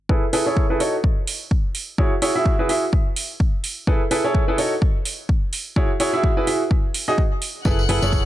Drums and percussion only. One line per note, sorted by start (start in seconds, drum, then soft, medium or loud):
0.09 kick loud
0.33 open hi-hat loud
0.57 kick loud
0.80 open hi-hat medium
1.04 kick loud
1.27 open hi-hat loud
1.51 kick loud
1.75 open hi-hat medium
1.98 kick loud
2.22 open hi-hat loud
2.46 kick loud
2.69 open hi-hat medium
2.93 kick loud
3.16 open hi-hat loud
3.40 kick loud
3.64 open hi-hat medium
3.87 kick loud
4.11 open hi-hat loud
4.35 kick loud
4.58 open hi-hat medium
4.82 kick loud
5.05 open hi-hat loud
5.29 kick loud
5.53 open hi-hat medium
5.76 kick loud
6.00 open hi-hat loud
6.24 kick loud
6.47 open hi-hat medium
6.71 kick loud
6.94 open hi-hat loud
7.18 kick loud
7.42 open hi-hat medium
7.65 kick loud
7.65 tambourine medium
7.79 tambourine soft
7.89 open hi-hat loud
8.02 tambourine medium
8.13 kick loud
8.13 tambourine medium